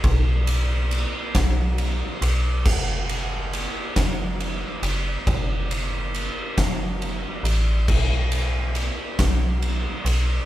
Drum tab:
CC |------|x-----|------|x-----|
RD |xxxxxx|-xxxxx|xxxxxx|-xxxxx|
SD |---o--|---o--|---o--|---o--|
BD |o--o--|o--o--|o--o--|o--o--|